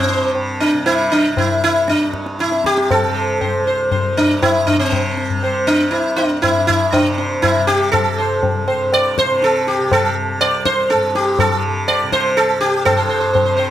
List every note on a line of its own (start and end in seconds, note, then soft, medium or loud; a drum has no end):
0.00 1.30 C2 medium
0.00 1.89 G2 medium
0.00 0.17 C3 medium
0.00 0.32 C4 medium
0.09 0.34 C5 soft
0.09 tabla te medium
0.17 0.74 C3 medium
0.35 tabla na medium
0.60 0.84 D4 medium
0.74 2.45 C3 medium
0.86 1.12 E4 medium
0.86 tabla tin medium
1.12 1.38 D4 medium
1.31 3.59 C2 medium
1.37 1.62 E4 medium
1.37 tabla na medium
1.37 tabla ge medium
1.64 1.90 E4 medium
1.88 4.17 G2 medium
1.88 2.41 D4 medium
1.88 tabla te medium
2.01 tabla te medium
2.13 tabla ke medium
2.26 tabla te medium
2.39 2.66 E4 medium
2.39 tabla te medium
2.45 3.03 C3 medium
2.52 tabla te medium
2.64 2.91 G4 medium
2.64 tabla ke medium
2.77 tabla te medium
2.91 3.63 A4 medium
2.91 tabla na medium
2.91 tabla ge medium
3.03 4.76 C3 medium
3.15 3.39 C5 soft
3.41 3.65 C5 soft
3.41 tabla tin medium
3.41 tabla ge medium
3.60 5.88 C2 medium
3.67 3.90 C5 soft
3.91 4.15 C5 soft
3.91 tabla tin medium
3.91 tabla ge medium
4.17 6.45 G2 medium
4.17 4.43 D4 medium
4.42 4.68 E4 medium
4.42 tabla na medium
4.42 tabla ge medium
4.67 4.79 D4 medium
4.67 tabla ge medium
4.76 5.32 C3 medium
4.76 5.51 C4 medium
4.92 tabla na medium
4.92 tabla ge medium
5.17 tabla te medium
5.30 7.01 C3 medium
5.30 tabla ge medium
5.43 5.67 C5 soft
5.43 tabla na medium
5.67 5.93 D4 medium
5.88 8.13 C2 soft
5.88 6.18 E4 medium
5.93 tabla tin medium
6.16 6.43 D4 medium
6.16 tabla na medium
6.42 8.69 G2 medium
6.42 6.66 E4 medium
6.42 tabla na medium
6.42 tabla ge medium
6.67 6.94 E4 medium
6.67 tabla ge medium
6.92 7.44 D4 medium
6.92 tabla na medium
6.92 tabla ge medium
7.01 7.58 C3 medium
7.18 7.41 C5 soft
7.18 tabla te medium
7.42 7.67 E4 medium
7.42 tabla na medium
7.42 tabla ge medium
7.58 9.25 C3 medium
7.67 7.91 G4 medium
7.67 tabla te medium
7.92 8.63 A4 medium
7.92 tabla na medium
7.92 tabla ge medium
8.14 10.37 C2 medium
8.18 8.41 C5 soft
8.43 tabla tin medium
8.43 tabla ge medium
8.68 10.93 G2 medium
8.68 8.91 C5 soft
8.68 tabla na medium
8.92 9.18 D5 medium
8.92 tabla na medium
9.18 9.43 C5 medium
9.18 tabla ke medium
9.25 9.81 C3 medium
9.43 9.67 A4 medium
9.43 tabla te medium
9.67 9.92 G4 medium
9.67 tabla te medium
9.81 11.48 C3 medium
9.91 10.15 A4 medium
9.91 tabla na medium
9.91 tabla ge medium
10.37 12.58 C2 medium
10.37 10.65 D5 medium
10.37 tabla na medium
10.65 10.91 C5 medium
10.65 tabla ke medium
10.90 12.87 G2 medium
10.90 11.15 A4 medium
10.90 tabla te medium
11.15 11.39 G4 medium
11.15 tabla te medium
11.39 11.62 A4 medium
11.39 tabla na medium
11.39 tabla ge medium
11.48 12.03 C3 medium
11.88 12.12 D5 medium
11.88 tabla na medium
12.03 13.42 C3 medium
12.12 12.38 C5 medium
12.12 tabla ke medium
12.37 12.60 A4 medium
12.37 tabla te medium
12.59 13.70 C2 medium
12.59 12.85 G4 medium
12.59 tabla te medium
12.85 13.70 G2 medium
12.85 13.55 A4 medium
12.85 12.96 C5 soft
12.85 tabla na medium
12.85 tabla ge medium
12.97 13.08 C5 soft
13.09 13.20 C5 soft
13.21 13.32 C5 soft
13.33 13.44 C5 soft
13.33 tabla tin medium
13.33 tabla ge medium
13.42 13.70 C3 medium
13.42 13.55 C5 soft
13.57 13.69 C5 soft
13.57 tabla na medium